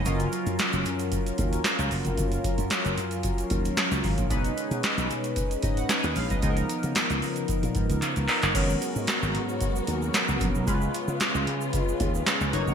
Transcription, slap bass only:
\new Staff \with { instrumentName = "Slap bass" } { \clef bass \time 4/4 \key fis \major \tempo 4 = 113 fis,,8 r16 fis,16 r16 fis,,16 fis,8. r16 dis,8 r16 cis,16 fis,,16 eis,,16 | fis,,8 r16 fis,16 r16 fis,,16 fis,8. r16 dis,8 r16 cis,16 gis,,16 ais,,16 | b,,8 r16 b,16 r16 b,,16 b,8. r16 gis,8 r16 dis,16 ais,,16 b,,16 | cis,8 r16 cis16 r16 cis,16 cis8 r16 ais,16 gis,16 cis,16 cis16 cis,16 r16 fis,,16 |
gis,,8 r16 gis,16 r16 gis,,16 gis,8. r16 dis,8 r16 cis,16 ais,,16 b,,16 | cis,8 r16 cis16 r16 cis,16 cis8. r16 dis,8 r16 cis,16 fis,,16 eis,,16 | }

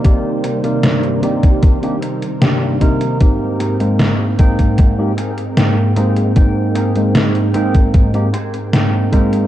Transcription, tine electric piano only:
\new Staff \with { instrumentName = "Tine electric piano" } { \time 4/4 \key aes \lydian \tempo 4 = 76 <c bes ees' g' d''>8. <c bes ees' bes' d''>8. <c bes ees' g' d''>8. <c bes d' ees' g'>16 r8 <c bes ees' g' d''>8 <c bes ees' bes'>8 | <aes, bes c' ees' g'>8. <aes, aes bes c' ees'>8. <aes, bes c' ees' g''>8. <aes, bes c' ees' g'>16 r8 <aes, bes c' ees' g''>8 <aes, aes bes c' ees'>8 | <aes, bes c' ees' g''>8. <aes, aes bes c' ees'>8. <aes, bes c' ees' g''>8. <aes, bes c' ees' g'>16 r8 <aes, bes c' ees' g''>8 <aes, aes bes c' ees'>8 | }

